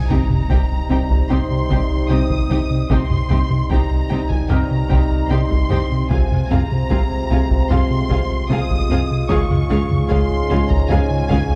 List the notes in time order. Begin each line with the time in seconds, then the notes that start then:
Already playing: C2 C3 G3 C4 D#4 D#6, sub drop
0.10 C2 C3 C4 D#4 G4 G5 A#5, taiko low-mid
0.30 C3, taiko low-mid
0.49 C2 C3 C4 D#4 G4 G5, taiko
0.71 C2
0.90 C2 C3 C4 D#4 G4 G5
1.10 C2, taiko
1.29 C2 C3 C4 D#4 G4 G5 C6, taiko low-mid
1.51 C3
1.70 C2 C3 C4 D#4 G4 G5, taiko
1.90 C2
2.09 C2 C3 C4 D#4 G4 G5 D#6
2.30 C2, taiko
2.49 C2 C3 C4 D#4 G4 G5, taiko low-mid
2.71 C3
2.90 C2 C3 G3 C4 D#4 G4 G5 C6, taiko
3.10 C3, taiko low-mid
3.29 C2 C3 C4 D#4 G4 G5, taiko low-mid
3.50 C3, taiko low-mid
3.70 C2 C3 C4 D#4 G4 G5 A#5, taiko
3.91 C2
4.09 C2 C3 C4 D#4 G4 G5
4.30 C2 G#5, taiko
4.48 C2 C3 C4 D#4 G4 G5 A#5 F6, taiko low-mid
4.71 C3
4.89 C2 C3 C4 D#4 G4 G5, taiko
5.11 C2
5.29 C2 C3 C4 D#4 G4 G5 C6
5.50 C2, taiko
5.69 C2 C3 C4 D#4 G4 G5, taiko low-mid
5.92 C3
6.10 C2 C3 G#3 C4 F4 G#4 F5 G#5, taiko
6.31 C3, taiko low-mid
6.49 C2 C3 C4 F4 G#4 F5 A#5, taiko low-mid
6.71 C3, taiko low-mid
6.89 C2 C3 C4 F4 G#4 F5, taiko
7.11 C2
7.30 C2 C3 C4 F4 G#4 F5
7.51 C2, taiko
7.70 C2 C3 C4 F4 G#4 F5 C6, taiko low-mid
7.91 C3
8.10 C2 C3 C4 F4 G#4 F5, taiko
8.31 C2
8.50 C2 C3 C4 F4 G#4 F5 D#6
8.70 C2, taiko
8.90 C2 C3 C4 F4 G#4 F5, taiko low-mid
9.11 C3
9.29 C#2 G#2 C#3 G#3 C#4 F4 G#4 F5 C#6 D#6, taiko
9.51 C#3, taiko low-mid
9.70 C#2 C#3 G#3 F4 G#4 F5, taiko low-mid
9.91 C#3, taiko low-mid
10.09 C#2 C#3 G#3 F4 G#4 F5 C6, taiko
10.31 C#2
10.49 C#2 C#3 G#3 F4 G#4 F5
10.70 C#2 A#5, taiko
10.90 C#2 C#3 G#3 F4 G#4 F5 G#5, taiko low-mid
11.10 C#3
11.29 C#2 C#3 G#3 F4 G#4 F5, taiko
11.50 C#2